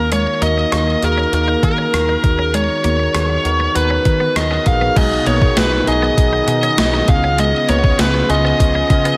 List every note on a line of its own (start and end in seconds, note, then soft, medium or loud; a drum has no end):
0.00 0.25 D#2 medium
0.00 0.68 D#3 medium
0.00 0.38 A#3 medium
0.00 0.39 D#4 medium
0.00 0.39 F#4 medium
0.00 0.39 A#4 medium
0.12 0.23 G#3 medium
0.12 0.42 C#5 medium
0.12 closed hi-hat medium
0.41 0.64 D#2 medium
0.41 0.70 A#3 medium
0.41 0.53 A#3 medium
0.41 0.70 D#4 medium
0.41 0.71 F#4 medium
0.41 0.71 A#4 medium
0.41 0.73 D#5 medium
0.41 closed hi-hat medium
0.58 muted clean electric guitar stroke soft
0.72 0.94 D#2 medium
0.72 1.01 A#3 medium
0.72 0.84 C#4 medium
0.72 1.01 D#4 medium
0.72 1.01 F#4 medium
0.72 1.01 A#4 medium
0.72 1.04 D#5 medium
0.72 cross-stick loud
0.72 closed hi-hat medium
0.87 muted clean electric guitar stroke soft
1.02 1.24 D#2 medium
1.02 1.31 A#3 medium
1.02 1.31 D#4 medium
1.02 1.31 F#4 medium
1.02 1.32 G#4 medium
1.02 1.33 A#4 medium
1.02 closed hi-hat medium
1.18 1.29 C#4 medium
1.32 1.54 D#2 loud
1.32 1.61 A#3 medium
1.32 1.61 D#4 medium
1.32 1.62 F#4 medium
1.32 1.62 A#4 medium
1.32 1.63 A#4 medium
1.32 closed hi-hat medium
1.48 1.60 D#4 medium
1.63 1.85 D#3 medium
1.63 1.92 A#3 medium
1.63 1.92 D#4 medium
1.63 1.92 F#4 medium
1.63 1.92 A#4 medium
1.63 2.57 A#4 medium
1.63 muted clean electric guitar stroke soft
1.63 kick medium
1.63 closed hi-hat medium
1.78 1.90 C#4 medium
1.93 2.15 D#2 medium
1.93 2.22 A#3 medium
1.93 2.22 D#4 medium
1.93 2.22 F#4 medium
1.93 2.23 A#4 medium
1.93 cross-stick medium
1.93 closed hi-hat medium
2.09 2.20 D#4 medium
2.23 2.67 D#2 medium
2.23 3.11 D#3 medium
2.23 2.81 B3 medium
2.23 2.81 D#4 medium
2.23 2.81 F#4 medium
2.23 2.82 G#4 medium
2.23 muted clean electric guitar stroke soft
2.23 kick loud
2.23 closed hi-hat medium
2.39 2.50 C#4 medium
2.54 2.66 G#3 medium
2.54 3.79 C#5 medium
2.54 closed hi-hat medium
2.84 3.06 D#2 medium
2.84 2.96 A#3 medium
2.84 3.13 B3 medium
2.84 3.13 D#4 medium
2.84 3.13 F#4 medium
2.84 3.13 A#4 medium
2.84 closed hi-hat medium
2.99 muted clean electric guitar stroke soft
3.14 3.36 D#2 medium
3.14 3.43 B3 medium
3.14 3.26 B3 medium
3.14 3.43 D#4 medium
3.14 3.43 F#4 medium
3.14 3.44 G#4 medium
3.14 cross-stick loud
3.14 closed hi-hat medium
3.29 muted clean electric guitar stroke soft
3.44 3.67 D#2 medium
3.44 3.73 B3 medium
3.44 3.74 D#4 medium
3.44 3.74 F#4 medium
3.44 3.74 A#4 medium
3.44 closed hi-hat medium
3.60 3.72 B3 medium
3.75 3.97 D#2 medium
3.75 4.04 B3 medium
3.75 4.04 D#4 medium
3.75 4.04 F#4 medium
3.75 4.04 B4 loud
3.75 4.63 B4 medium
3.75 closed hi-hat medium
3.90 4.02 C#4 medium
4.05 4.27 D#3 medium
4.05 4.34 B3 medium
4.05 4.34 D#4 medium
4.05 4.34 F#4 medium
4.05 4.35 A#4 medium
4.05 muted clean electric guitar stroke soft
4.05 kick medium
4.05 closed hi-hat medium
4.20 4.32 B3 medium
4.35 4.57 D#2 medium
4.35 4.64 B3 medium
4.35 4.64 D#4 medium
4.35 4.65 F#4 medium
4.35 4.65 A#4 medium
4.35 4.67 D#5 medium
4.35 cross-stick loud
4.35 closed hi-hat medium
4.51 4.62 C#4 medium
4.66 4.88 A#1 medium
4.66 4.95 B3 medium
4.66 4.95 D#4 medium
4.66 4.95 F#4 medium
4.66 4.95 G#4 medium
4.66 4.98 F5 medium
4.66 muted clean electric guitar stroke soft
4.66 kick medium
4.66 closed hi-hat medium
4.81 4.93 B3 medium
4.96 5.18 B1 loud
4.96 5.83 B2 medium
4.96 7.07 D#3 medium
4.96 7.06 F#3 medium
4.96 5.08 G#3 medium
4.96 5.25 B3 medium
4.96 9.17 B3 medium
4.96 5.25 D#4 medium
4.96 7.06 F#4 medium
4.96 5.25 F#4 medium
4.96 9.17 G#4 medium
4.96 5.26 G#4 loud
4.96 5.27 D#5 loud
4.96 kick loud
4.96 closed hi-hat medium
4.96 crash medium
5.26 5.48 B1 loud
5.26 5.38 A#3 medium
5.26 5.55 B3 medium
5.26 5.55 D#4 medium
5.26 5.56 F#4 medium
5.26 5.56 A#4 medium
5.26 5.58 C#5 medium
5.26 closed hi-hat medium
5.42 muted clean electric guitar stroke soft
5.42 kick medium
5.57 5.79 B1 loud
5.57 5.86 B3 medium
5.57 5.69 B3 medium
5.57 5.86 D#4 medium
5.57 5.86 F#4 medium
5.57 5.86 G#4 medium
5.57 5.86 B4 medium
5.57 snare loud
5.57 closed hi-hat medium
5.57 tambourine medium
5.72 muted clean electric guitar stroke soft
5.87 6.09 B1 medium
5.87 6.16 B3 medium
5.87 6.16 D#4 medium
5.87 6.16 F#4 medium
5.87 6.17 G#4 loud
5.87 6.78 D#5 medium
5.87 closed hi-hat medium
6.02 6.14 B3 medium
6.17 6.39 B1 loud
6.17 6.46 B3 medium
6.17 6.46 D#4 medium
6.17 6.47 F#4 medium
6.17 6.47 G#4 medium
6.17 kick medium
6.17 closed hi-hat medium
6.33 6.44 D#4 medium
6.47 6.69 B2 medium
6.47 6.76 B3 medium
6.47 6.76 D#4 medium
6.47 6.77 F#4 medium
6.47 6.77 G#4 medium
6.47 muted clean electric guitar stroke soft
6.47 closed hi-hat medium
6.63 6.75 C#4 medium
6.63 closed hi-hat medium
6.78 7.00 B1 medium
6.78 7.07 B3 medium
6.78 7.07 D#4 medium
6.78 7.07 F#4 medium
6.78 7.07 B4 medium
6.78 7.10 D#5 medium
6.78 snare loud
6.78 closed hi-hat medium
6.78 tambourine medium
6.93 7.05 D#4 medium
7.08 7.52 C#2 medium
7.08 7.95 C#3 medium
7.08 9.17 C#3 medium
7.08 9.17 F3 medium
7.08 7.66 B3 medium
7.08 7.66 C#4 medium
7.08 7.15 E4 medium
7.08 9.17 F4 medium
7.08 7.66 G#4 medium
7.08 7.40 F5 loud
7.08 muted clean electric guitar stroke soft
7.08 kick loud
7.08 closed hi-hat medium
7.15 7.68 F4 medium
7.24 7.35 C#4 medium
7.38 7.50 G#3 medium
7.38 7.69 D#5 medium
7.38 closed hi-hat medium
7.68 7.91 C#2 loud
7.68 7.81 A#3 medium
7.68 7.97 B3 medium
7.68 7.97 C#4 medium
7.68 7.98 F4 medium
7.68 7.98 B4 medium
7.68 8.01 C#5 medium
7.68 closed hi-hat medium
7.84 muted clean electric guitar stroke soft
7.84 kick medium
7.98 8.21 C#2 medium
7.98 8.27 B3 medium
7.98 8.11 B3 medium
7.98 8.28 C#4 medium
7.98 8.28 F4 medium
7.98 8.28 G#4 medium
7.98 8.28 B4 medium
7.98 snare loud
7.98 closed hi-hat loud
7.98 tambourine medium
8.14 muted clean electric guitar stroke soft
8.29 8.51 C#2 medium
8.29 8.58 B3 medium
8.29 8.58 C#4 medium
8.29 8.58 F4 medium
8.29 8.58 G#4 loud
8.29 9.17 D#5 loud
8.29 closed hi-hat medium
8.45 8.56 B3 medium
8.59 8.82 C#2 loud
8.59 8.88 B3 medium
8.59 8.89 C#4 medium
8.59 8.89 F4 medium
8.59 8.89 G#4 medium
8.59 kick medium
8.59 closed hi-hat medium
8.75 8.87 C#4 medium
8.89 9.12 C#3 medium
8.89 9.17 B3 medium
8.89 9.17 C#4 medium
8.89 9.17 F4 medium
8.89 9.17 G#4 medium
8.89 muted clean electric guitar stroke soft
8.89 kick medium
8.89 closed hi-hat medium
9.05 9.17 B3 medium
9.05 closed hi-hat medium